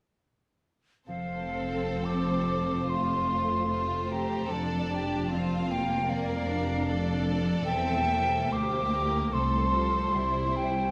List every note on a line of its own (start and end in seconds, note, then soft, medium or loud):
1.08 4.47 F1 soft
1.08 4.48 F2 soft
1.08 4.50 F3 soft
1.08 2.86 C4 soft
1.08 2.86 A4 soft
1.08 3.67 C5 soft
1.08 2.06 F5 soft
1.39 2.03 C5 soft
1.73 3.42 A4 soft
2.04 3.14 C5 soft
2.04 2.91 D6 soft
2.34 2.88 C4 soft
2.62 4.23 F4 soft
2.89 4.48 A3 soft
2.89 3.96 C4 soft
2.89 3.69 F4 soft
2.89 4.10 C6 soft
3.16 3.69 C5 soft
3.43 4.54 A4 soft
3.70 4.10 F4 soft
3.70 4.54 C5 soft
3.70 4.50 C5 soft
3.97 4.54 C4 soft
4.11 4.51 G4 soft
4.11 4.52 A#5 soft
4.24 5.83 F4 soft
4.50 7.61 F1 soft
4.50 7.61 F2 soft
4.50 6.09 F3 soft
4.50 5.30 D4 soft
4.50 4.92 A4 soft
4.50 5.31 D5 soft
4.50 5.72 A5 medium
4.78 5.31 D5 soft
4.92 5.32 G4 soft
5.05 6.60 G4 soft
5.31 5.70 C4 soft
5.31 6.08 F4 soft
5.31 6.35 D5 soft
5.31 6.09 F5 soft
5.58 7.11 A#3 soft
5.70 6.07 A#3 soft
5.70 6.11 G5 soft
5.84 7.37 F4 soft
6.08 7.68 F3 soft
6.08 6.46 A#3 soft
6.08 6.84 A#4 soft
6.08 6.84 D5 soft
6.08 7.37 F5 medium
6.36 6.85 D5 soft
6.47 7.64 D4 soft
6.61 8.23 G4 soft
6.85 8.52 A4 soft
6.85 7.63 D5 soft
6.85 7.68 D5 soft
7.12 7.68 A#3 soft
7.39 7.69 F4 soft
7.64 8.50 E1 soft
7.64 8.51 E2 soft
7.64 9.37 E3 soft
7.64 8.08 C4 soft
7.64 8.52 E5 soft
7.64 8.53 G5 medium
7.94 8.51 C5 soft
8.08 9.31 A#3 soft
8.24 9.37 G4 soft
8.52 9.32 D2 soft
8.52 9.33 G4 soft
8.52 8.93 C5 soft
8.52 9.87 C5 soft
8.52 9.35 D6 medium
8.80 9.37 G3 soft
8.94 9.34 A#4 soft
9.07 9.37 E4 soft
9.33 10.13 C2 soft
9.33 10.13 C3 soft
9.33 9.74 A3 soft
9.33 10.13 A4 soft
9.33 10.91 C5 soft
9.33 10.57 C6 medium
9.61 10.18 A3 soft
9.73 10.14 F3 soft
9.88 10.18 F4 soft
9.88 10.91 C5 soft
10.13 10.91 C2 soft
10.13 10.91 C3 soft
10.13 10.91 G3 soft
10.13 10.91 E4 soft
10.42 10.91 A#3 soft
10.56 10.91 G5 soft
10.71 10.91 E4 soft
10.71 10.91 C#5 soft